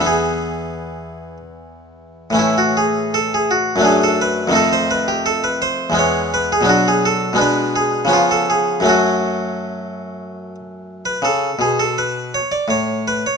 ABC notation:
X:1
M:3/4
L:1/16
Q:1/4=81
K:Emix
V:1 name="Harpsichord"
G8 z4 | E F G2 A G F2 G A B2 | A =c B =G A B c2 ^c2 B ^G | [K:Bdor] F G A2 B2 G2 ^E A G2 |
F8- F2 z B | A2 G A B2 c d c2 B c |]
V:2 name="Harpsichord" clef=bass
[E,,E,B,]12 | [A,,E,A,C]8 [F,,F,A,D]4 | [=F,,_E,A,_E]8 [=E,,=E,G,B,]4 | [K:Bdor] [B,,F,B,D]4 [B,,G,B,D]4 [C,^E,B,C]4 |
[F,,F,A,C]12 | C,2 B,,6 A,,4 |]